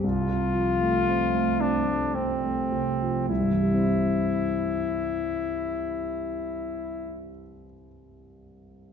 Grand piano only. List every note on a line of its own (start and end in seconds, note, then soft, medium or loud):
0.03 3.25 C2 soft
0.29 0.69 C3 soft
0.54 0.95 F3 soft
0.81 1.22 A3 soft
1.07 1.49 C4 soft
1.34 1.76 A3 soft
1.60 2.03 C4 soft
1.86 2.31 A3 soft
2.15 2.60 C4 soft
2.44 2.90 A3 soft
2.72 3.18 C3 soft
3.02 3.30 F3 soft
3.29 7.31 C2 soft
3.40 7.42 G2 soft
3.51 7.53 E3 soft
3.61 7.63 G3 soft
3.72 7.74 C4 soft
3.83 7.85 E4 soft